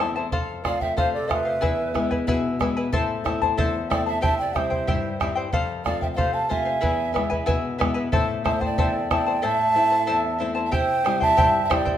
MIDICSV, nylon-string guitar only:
0, 0, Header, 1, 2, 480
1, 0, Start_track
1, 0, Key_signature, 0, "minor"
1, 0, Tempo, 650759
1, 240, Time_signature, 2, 2, 24, 8
1, 8834, End_track
2, 0, Start_track
2, 0, Title_t, "Nylon-string guitar"
2, 0, Program_c, 0, 24
2, 0, Note_on_c, 0, 40, 61
2, 2, Note_on_c, 0, 57, 44
2, 5, Note_on_c, 0, 60, 41
2, 9, Note_on_c, 0, 64, 49
2, 193, Note_off_c, 0, 57, 0
2, 195, Note_off_c, 0, 60, 0
2, 197, Note_off_c, 0, 64, 0
2, 228, Note_off_c, 0, 40, 0
2, 237, Note_on_c, 0, 41, 62
2, 479, Note_on_c, 0, 57, 46
2, 479, Note_on_c, 0, 60, 41
2, 484, Note_on_c, 0, 65, 57
2, 704, Note_off_c, 0, 41, 0
2, 724, Note_on_c, 0, 48, 69
2, 863, Note_off_c, 0, 57, 0
2, 863, Note_off_c, 0, 60, 0
2, 866, Note_off_c, 0, 65, 0
2, 959, Note_on_c, 0, 57, 50
2, 962, Note_on_c, 0, 60, 42
2, 964, Note_on_c, 0, 65, 52
2, 1152, Note_off_c, 0, 57, 0
2, 1153, Note_off_c, 0, 60, 0
2, 1153, Note_off_c, 0, 65, 0
2, 1188, Note_off_c, 0, 48, 0
2, 1199, Note_on_c, 0, 40, 69
2, 1434, Note_on_c, 0, 56, 49
2, 1440, Note_on_c, 0, 59, 42
2, 1444, Note_on_c, 0, 64, 53
2, 1665, Note_off_c, 0, 40, 0
2, 1675, Note_on_c, 0, 47, 67
2, 1821, Note_off_c, 0, 56, 0
2, 1822, Note_off_c, 0, 59, 0
2, 1827, Note_off_c, 0, 64, 0
2, 1913, Note_on_c, 0, 56, 48
2, 1918, Note_on_c, 0, 59, 46
2, 1923, Note_on_c, 0, 64, 49
2, 2108, Note_off_c, 0, 56, 0
2, 2112, Note_off_c, 0, 59, 0
2, 2113, Note_off_c, 0, 64, 0
2, 2143, Note_off_c, 0, 47, 0
2, 2157, Note_on_c, 0, 45, 68
2, 2390, Note_on_c, 0, 57, 45
2, 2396, Note_on_c, 0, 60, 46
2, 2399, Note_on_c, 0, 64, 60
2, 2624, Note_off_c, 0, 45, 0
2, 2643, Note_on_c, 0, 40, 75
2, 2778, Note_off_c, 0, 57, 0
2, 2782, Note_off_c, 0, 60, 0
2, 2783, Note_off_c, 0, 64, 0
2, 2879, Note_on_c, 0, 57, 52
2, 2883, Note_on_c, 0, 60, 45
2, 2884, Note_on_c, 0, 64, 60
2, 3072, Note_off_c, 0, 57, 0
2, 3073, Note_off_c, 0, 60, 0
2, 3075, Note_off_c, 0, 64, 0
2, 3107, Note_off_c, 0, 40, 0
2, 3121, Note_on_c, 0, 48, 66
2, 3360, Note_on_c, 0, 55, 46
2, 3364, Note_on_c, 0, 60, 41
2, 3370, Note_on_c, 0, 64, 54
2, 3587, Note_off_c, 0, 48, 0
2, 3605, Note_on_c, 0, 43, 71
2, 3744, Note_off_c, 0, 55, 0
2, 3747, Note_off_c, 0, 60, 0
2, 3749, Note_off_c, 0, 64, 0
2, 3849, Note_on_c, 0, 55, 51
2, 3852, Note_on_c, 0, 60, 41
2, 3856, Note_on_c, 0, 64, 56
2, 4037, Note_off_c, 0, 55, 0
2, 4040, Note_off_c, 0, 60, 0
2, 4042, Note_off_c, 0, 64, 0
2, 4069, Note_off_c, 0, 43, 0
2, 4090, Note_on_c, 0, 41, 66
2, 4320, Note_on_c, 0, 57, 41
2, 4326, Note_on_c, 0, 60, 45
2, 4330, Note_on_c, 0, 65, 58
2, 4551, Note_off_c, 0, 41, 0
2, 4559, Note_on_c, 0, 48, 68
2, 4704, Note_off_c, 0, 57, 0
2, 4708, Note_off_c, 0, 60, 0
2, 4711, Note_off_c, 0, 65, 0
2, 4795, Note_on_c, 0, 57, 47
2, 4799, Note_on_c, 0, 60, 45
2, 4803, Note_on_c, 0, 65, 58
2, 4990, Note_off_c, 0, 57, 0
2, 4991, Note_off_c, 0, 60, 0
2, 4994, Note_off_c, 0, 65, 0
2, 5026, Note_off_c, 0, 48, 0
2, 5036, Note_on_c, 0, 40, 68
2, 5277, Note_on_c, 0, 56, 48
2, 5279, Note_on_c, 0, 59, 45
2, 5285, Note_on_c, 0, 64, 50
2, 5504, Note_off_c, 0, 40, 0
2, 5523, Note_on_c, 0, 47, 70
2, 5663, Note_off_c, 0, 56, 0
2, 5665, Note_off_c, 0, 59, 0
2, 5667, Note_off_c, 0, 64, 0
2, 5753, Note_on_c, 0, 56, 50
2, 5758, Note_on_c, 0, 59, 47
2, 5761, Note_on_c, 0, 64, 56
2, 5949, Note_off_c, 0, 56, 0
2, 5950, Note_off_c, 0, 59, 0
2, 5953, Note_off_c, 0, 64, 0
2, 5988, Note_off_c, 0, 47, 0
2, 5998, Note_on_c, 0, 45, 63
2, 6233, Note_on_c, 0, 57, 47
2, 6235, Note_on_c, 0, 60, 47
2, 6240, Note_on_c, 0, 64, 59
2, 6465, Note_off_c, 0, 45, 0
2, 6480, Note_on_c, 0, 40, 65
2, 6621, Note_off_c, 0, 57, 0
2, 6621, Note_off_c, 0, 60, 0
2, 6625, Note_off_c, 0, 64, 0
2, 6717, Note_on_c, 0, 57, 47
2, 6720, Note_on_c, 0, 60, 46
2, 6723, Note_on_c, 0, 64, 53
2, 6911, Note_off_c, 0, 57, 0
2, 6912, Note_off_c, 0, 60, 0
2, 6914, Note_off_c, 0, 64, 0
2, 6946, Note_off_c, 0, 40, 0
2, 6962, Note_on_c, 0, 45, 74
2, 7195, Note_on_c, 0, 57, 50
2, 7199, Note_on_c, 0, 60, 48
2, 7200, Note_on_c, 0, 64, 56
2, 7427, Note_off_c, 0, 45, 0
2, 7447, Note_on_c, 0, 40, 62
2, 7581, Note_off_c, 0, 57, 0
2, 7582, Note_off_c, 0, 60, 0
2, 7584, Note_off_c, 0, 64, 0
2, 7678, Note_on_c, 0, 57, 50
2, 7682, Note_on_c, 0, 64, 54
2, 7683, Note_on_c, 0, 60, 42
2, 7871, Note_off_c, 0, 57, 0
2, 7873, Note_off_c, 0, 60, 0
2, 7873, Note_off_c, 0, 64, 0
2, 7909, Note_off_c, 0, 40, 0
2, 7921, Note_on_c, 0, 48, 74
2, 8157, Note_on_c, 0, 55, 57
2, 8159, Note_on_c, 0, 60, 51
2, 8163, Note_on_c, 0, 64, 58
2, 8386, Note_off_c, 0, 48, 0
2, 8403, Note_on_c, 0, 43, 70
2, 8542, Note_off_c, 0, 55, 0
2, 8542, Note_off_c, 0, 60, 0
2, 8544, Note_off_c, 0, 64, 0
2, 8635, Note_on_c, 0, 55, 52
2, 8638, Note_on_c, 0, 60, 43
2, 8643, Note_on_c, 0, 64, 57
2, 8834, Note_off_c, 0, 43, 0
2, 8834, Note_off_c, 0, 55, 0
2, 8834, Note_off_c, 0, 60, 0
2, 8834, Note_off_c, 0, 64, 0
2, 8834, End_track
0, 0, End_of_file